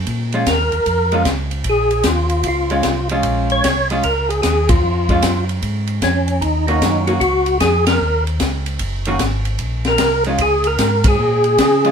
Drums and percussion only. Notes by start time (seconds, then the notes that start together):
0.07 kick, ride
0.32 ride
0.46 kick, snare, hi-hat pedal, ride
0.72 ride
0.86 kick, ride
1.12 ride
1.25 kick, snare, hi-hat pedal, ride
1.51 ride
1.64 kick, ride
1.91 ride
2.03 kick, snare, hi-hat pedal, ride
2.29 ride
2.43 kick, ride
2.70 ride
2.83 kick, snare, hi-hat pedal, ride
3.09 ride
3.23 kick, ride
3.50 ride
3.64 kick, snare, hi-hat pedal, ride
3.90 ride
4.03 kick, ride
4.30 ride
4.43 kick, snare, hi-hat pedal, ride
4.69 kick, ride
5.09 kick, ride
5.22 kick, snare, hi-hat pedal, ride
5.49 ride
5.62 kick, ride
5.87 ride
6.02 kick, snare, hi-hat pedal, ride
6.28 ride
6.41 kick, ride
6.68 ride
6.81 kick, snare, hi-hat pedal, ride
7.07 ride
7.21 kick, ride
7.46 ride
7.60 kick, snare, hi-hat pedal, ride
7.86 snare, ride
8.27 ride
8.40 kick, snare, hi-hat pedal, ride
8.66 ride
8.79 kick, ride
9.05 ride
9.19 kick, snare, hi-hat pedal, ride
9.45 ride
9.59 kick, ride
9.85 snare, ride
9.98 kick, snare, hi-hat pedal, ride
10.24 ride
10.38 kick, ride
10.64 ride
10.78 kick, snare, hi-hat pedal, ride
11.04 kick, ride
11.44 ride
11.58 kick, snare, hi-hat pedal, ride
11.85 ride